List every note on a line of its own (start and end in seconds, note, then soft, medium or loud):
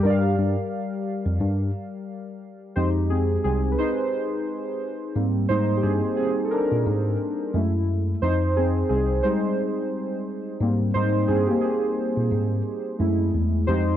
0.00 2.68 G3 medium
0.00 2.70 G4 medium
0.00 2.72 A#4 medium
0.05 0.34 G2 loud
0.05 2.73 D5 medium
0.10 2.75 F5 medium
0.38 0.55 G2 medium
1.26 1.38 F2 medium
1.41 1.70 G2 medium
2.76 3.36 F2 loud
2.76 5.11 G#3 soft
2.76 3.78 D#4 medium
2.76 5.10 G4 soft
2.76 2.90 C5 medium
3.10 3.42 C4 medium
3.10 3.42 G#4 medium
3.44 3.74 C2 medium
3.44 3.71 C4 medium
3.44 3.70 G#4 medium
3.72 3.78 B4 medium
3.78 4.43 D#4 medium
3.78 4.42 C5 medium
5.15 5.45 G#2 medium
5.15 5.62 G3 soft
5.15 5.62 A#3 soft
5.15 5.63 C4 medium
5.49 5.79 G#2 loud
5.49 5.76 D#4 medium
5.49 5.78 C5 loud
5.77 5.83 G4 medium
5.83 6.00 G2 medium
5.83 6.16 C4 medium
5.83 6.16 G#4 medium
6.17 6.44 C4 medium
6.17 6.43 G#4 medium
6.45 6.51 A4 medium
6.51 7.16 D4 medium
6.51 7.15 A#4 medium
6.72 6.84 A#2 medium
6.86 7.16 G#2 loud
7.53 8.14 F#2 medium
7.53 8.18 G#3 soft
7.53 8.19 A3 soft
7.53 8.19 E4 medium
8.22 8.82 F2 medium
8.22 8.54 D#4 medium
8.22 8.57 C5 loud
8.56 8.72 C4 medium
8.56 8.70 G#4 medium
8.89 9.20 C2 medium
8.89 9.22 C4 medium
8.89 9.21 G#4 medium
9.23 9.71 G3 medium
9.23 9.71 G#3 soft
9.23 9.89 D#4 medium
9.23 9.87 C5 medium
10.61 10.90 G#2 medium
10.61 11.08 G3 medium
10.61 11.08 A#3 soft
10.61 11.08 C4 medium
10.94 11.25 G#2 medium
10.94 11.27 D#4 medium
10.94 11.29 C5 loud
11.28 11.46 G2 medium
11.28 11.47 C4 medium
11.28 11.46 G#4 medium
11.47 11.56 A#3 medium
11.47 11.54 G4 medium
11.61 13.30 C4 medium
11.61 13.28 G#4 medium
12.17 12.29 A#2 medium
12.32 12.61 G#2 medium
12.99 13.29 F#2 medium
12.99 13.63 G#3 medium
12.99 13.64 A3 soft
12.99 13.64 E4 medium
13.35 13.64 E2 medium
13.67 13.97 F2 medium
13.67 13.97 G#3 soft
13.67 13.97 D#4 medium
13.67 13.97 G4 medium
13.67 13.97 C5 loud